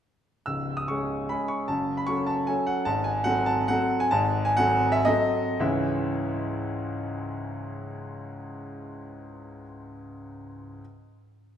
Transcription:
0.46 0.87 C#1 soft
0.46 0.87 C#2 soft
0.46 0.77 E6 medium
0.77 0.88 D#6 medium
0.88 1.27 G#3 soft
0.88 1.27 C#4 soft
0.88 1.27 G#4 soft
0.88 1.30 C#6 medium
1.29 1.66 G#3 soft
1.29 1.66 C#4 soft
1.29 1.66 G#4 soft
1.29 1.50 B5 medium
1.48 1.69 C#6 medium
1.68 2.07 F#1 soft
1.68 2.07 F#2 soft
1.68 1.98 A5 medium
1.97 2.08 B5 medium
2.07 2.43 F#3 soft
2.07 2.44 C#4 soft
2.07 2.44 A4 soft
2.07 2.27 C#6 medium
2.27 2.47 A5 medium
2.47 2.83 F#3 soft
2.47 2.84 C#4 soft
2.47 2.84 A4 soft
2.47 2.67 G#5 medium
2.67 2.87 F#5 medium
2.85 3.24 G#1 medium
2.85 3.24 G#2 medium
2.85 3.05 A5 medium
3.04 3.25 G#5 medium
3.24 3.64 F#3 soft
3.24 3.64 C4 soft
3.24 3.65 A4 soft
3.24 3.46 F#5 medium
3.46 3.68 A5 medium
3.68 4.09 F#3 soft
3.68 4.09 C4 soft
3.68 4.09 A4 medium
3.68 4.01 F#5 medium
4.00 4.12 G#5 medium
4.11 4.56 G#1 medium
4.11 4.56 G#2 medium
4.11 4.45 A5 medium
4.45 4.57 G#5 medium
4.57 5.03 F#3 medium
4.57 5.03 C4 medium
4.57 5.03 A4 medium
4.57 4.93 F#5 loud
4.92 5.06 E5 medium
5.05 5.56 F#3 soft
5.05 5.56 C4 medium
5.05 5.57 A4 medium
5.05 5.60 D#5 medium
5.59 9.62 C#2 medium
5.59 9.62 G#2 soft
5.59 9.63 E3 medium
5.59 9.64 G#3 soft
5.59 9.64 C#4 medium
5.59 9.64 E4 soft
5.59 9.63 E5 medium

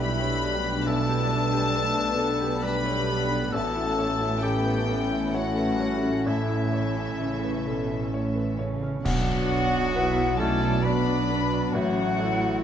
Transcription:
0.00 0.82 B1 medium
0.00 3.50 B1 medium
0.00 3.50 B2 medium
0.00 1.76 G3 medium
0.00 3.37 A3 medium
0.00 3.37 D4 medium
0.00 0.42 E4 medium
0.00 0.87 G4 medium
0.00 0.89 G4 medium
0.00 0.90 A4 medium
0.00 0.89 B4 medium
0.00 0.89 B4 soft
0.00 0.43 D5 medium
0.00 0.85 B5 loud
0.20 0.42 C#5 soft
0.43 2.64 D4 medium
0.43 0.78 D5 medium
0.64 1.00 D4 medium
0.86 3.49 B1 medium
0.86 1.31 E4 medium
0.86 2.65 A4 loud
0.86 2.60 B4 medium
0.86 2.64 A5 loud
1.09 1.45 G4 medium
1.30 2.63 D4 medium
1.30 1.66 D5 medium
1.53 1.88 G4 medium
1.75 2.19 A3 medium
1.75 2.10 A4 medium
1.96 2.19 B4 soft
2.19 2.63 B3 medium
2.19 2.54 A4 medium
2.41 2.77 G4 medium
2.62 3.54 G3 medium
2.62 4.43 B3 medium
2.62 3.51 G4 medium
2.62 3.07 B4 medium
2.62 3.54 B4 medium
2.62 2.99 D5 medium
2.62 3.53 B5 loud
2.86 3.08 C#5 medium
3.08 3.52 A4 medium
3.08 3.44 D5 medium
3.32 3.54 D4 medium
3.53 8.80 A1 medium
3.53 6.23 A1 medium
3.53 7.06 A2 medium
3.53 8.68 A3 medium
3.53 3.97 A3 medium
3.53 8.72 C#4 medium
3.53 4.41 F#4 medium
3.53 4.42 A4 medium
3.53 6.22 A4 medium
3.53 4.41 A5 loud
3.76 4.12 E4 medium
3.98 4.42 A3 medium
3.98 4.34 C#5 soft
4.21 4.57 E4 medium
4.42 5.35 B3 medium
4.42 4.88 E4 medium
4.42 5.04 G4 medium
4.42 4.79 A4 medium
4.42 5.34 G5 medium
4.66 4.88 B4 soft
4.89 6.24 E4 medium
4.89 5.25 A4 medium
5.11 5.48 E4 soft
5.33 5.80 A3 medium
5.33 6.26 C#4 medium
5.33 6.27 F#4 medium
5.33 5.71 C#5 medium
5.33 6.26 F#5 medium
5.57 5.80 B4 soft
5.80 6.27 G3 medium
5.80 6.17 C#5 medium
6.03 6.40 C#4 soft
6.26 9.00 A1 medium
6.26 8.80 A3 medium
6.26 8.80 C#4 medium
6.26 8.58 E4 medium
6.26 8.80 A4 medium
6.26 8.55 E5 medium
6.50 6.87 E4 soft
6.73 7.10 C#5 soft
6.96 7.34 E4 soft
7.20 7.63 C#3 medium
7.20 7.57 A4 soft
7.44 7.67 B4 soft
7.66 8.13 B2 medium
7.66 8.03 A4 soft
7.90 8.27 E4 soft
8.12 8.59 A2 medium
8.12 8.50 C#5 soft
8.35 8.59 B4 soft
8.59 9.05 C#3 medium
8.59 8.96 C#5 soft
8.82 9.05 C#4 soft
9.03 11.70 B1 medium
9.03 11.70 B2 medium
9.03 10.35 F#3 medium
9.03 12.59 F#3 medium
9.03 10.41 B3 medium
9.03 9.91 D4 medium
9.03 10.41 F#4 loud
9.03 10.39 F#5 loud
9.03 9.90 F#5 medium
9.03 10.36 F#5 loud
9.03 concert bass drum medium
9.03 crash medium
9.50 10.22 F#4 medium
9.95 10.67 B3 medium
9.95 10.83 E4 medium
9.95 10.39 E5 medium
10.38 10.84 A3 medium
10.38 10.84 C#4 loud
10.38 11.12 F#4 medium
10.38 10.85 A4 loud
10.38 11.72 D5 medium
10.38 10.84 A5 medium
10.82 11.72 B3 medium
10.82 11.56 D4 medium
10.82 11.76 D4 medium
10.82 11.74 D4 medium
10.82 11.73 B4 medium
10.82 11.74 B5 medium
10.82 11.73 B5 medium
11.30 11.74 B3 medium
11.73 12.63 A1 medium
11.73 12.63 A2 medium
11.73 12.63 F#3 medium
11.73 12.63 A3 medium
11.73 12.19 C#4 medium
11.73 12.61 F#4 medium
11.73 12.63 C#5 medium
11.73 12.61 F#5 medium
12.19 12.63 E4 medium
12.19 12.63 A4 medium

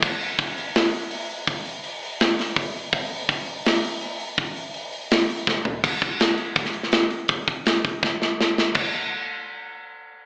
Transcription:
0.02 kick loud
0.02 crash loud
0.20 open hi-hat medium
0.39 kick medium
0.39 open hi-hat loud
0.57 open hi-hat medium
0.75 snare loud
0.75 open hi-hat medium
0.93 open hi-hat medium
1.11 open hi-hat loud
1.29 open hi-hat medium
1.47 kick loud
1.47 open hi-hat medium
1.65 open hi-hat medium
1.84 open hi-hat loud
2.03 open hi-hat medium
2.20 snare loud
2.20 open hi-hat medium
2.39 snare soft
2.39 open hi-hat medium
2.56 kick loud
2.56 open hi-hat loud
2.75 open hi-hat medium
2.93 kick loud
2.93 open hi-hat loud
3.11 open hi-hat medium
3.29 kick medium
3.29 open hi-hat medium
3.47 open hi-hat medium
3.66 snare loud
3.66 open hi-hat loud
3.84 open hi-hat medium
4.01 open hi-hat loud
4.20 open hi-hat medium
4.37 kick loud
4.37 open hi-hat medium
4.56 open hi-hat medium
4.74 open hi-hat medium
4.92 open hi-hat medium
5.11 snare loud
5.11 open hi-hat loud
5.29 open hi-hat medium
5.47 kick loud
5.47 snare medium
5.65 floor tom loud
5.84 kick loud
5.84 crash loud
6.02 kick medium
6.02 open hi-hat medium
6.20 snare loud
6.20 open hi-hat medium
6.38 open hi-hat medium
6.56 kick loud
6.56 open hi-hat medium
6.65 snare soft
6.74 open hi-hat medium
6.83 snare soft
6.92 snare loud
6.92 open hi-hat medium
7.10 open hi-hat medium
7.28 kick loud
7.28 open hi-hat medium
7.48 kick medium
7.48 open hi-hat medium
7.66 snare loud
7.66 open hi-hat medium
7.85 kick medium
7.85 open hi-hat medium
8.03 kick loud
8.03 snare medium
8.22 snare medium
8.41 snare medium
8.58 snare medium
8.75 kick loud
8.75 crash medium

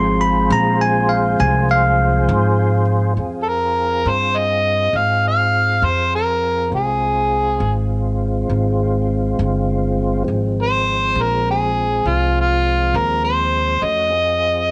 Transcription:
0.00 0.47 G#1 medium
0.00 3.12 F3 medium
0.00 3.13 G#3 soft
0.00 3.13 C4 soft
0.00 3.13 F4 medium
0.00 3.13 G#4 medium
0.00 3.14 C5 medium
0.00 0.21 C6 medium
0.21 0.50 B5 medium
0.50 1.36 A#1 medium
0.50 0.80 A#5 medium
0.81 1.09 G#5 medium
1.09 1.38 F5 medium
1.40 2.25 C2 loud
1.40 1.68 G#5 medium
1.71 2.84 F5 medium
2.29 3.14 G#2 loud
3.17 4.03 F2 medium
3.17 6.68 C4 medium
3.17 6.69 F4 soft
3.17 6.69 G#4 medium
3.43 3.50 A4 medium
3.48 4.10 A#4 medium
4.05 4.91 G2 medium
4.05 4.38 C5 medium
4.37 4.98 D#5 loud
4.93 5.80 G#2 medium
4.93 5.25 F5 medium
5.28 5.86 F5 medium
5.82 6.69 F2 medium
5.82 6.13 C5 medium
6.15 6.69 A#4 medium
6.70 7.58 C2 medium
6.70 10.23 G#3 medium
6.70 10.23 C4 medium
6.70 10.23 F4 medium
6.75 7.88 G#4 medium
7.60 8.47 G#1 medium
8.50 9.36 G#1 medium
9.39 10.25 G1 medium
10.24 11.14 G#1 medium
10.24 13.78 F3 medium
10.24 13.79 G#3 medium
10.24 13.78 C4 medium
10.63 11.24 C5 medium
11.15 12.02 A#1 medium
11.22 11.49 A#4 medium
11.51 12.09 G#4 medium
12.05 12.92 C2 medium
12.05 12.37 F4 medium
12.41 12.99 F4 medium
12.94 13.81 D#2 medium
12.94 13.24 A#4 medium
13.25 13.85 C5 medium
13.82 14.69 F2 medium
13.82 14.12 A3 medium
13.82 14.13 C#4 medium
13.82 14.13 F#4 medium
13.82 14.71 D#5 medium
14.08 14.71 C4 medium
14.08 14.71 F4 medium
14.08 14.71 G#4 medium

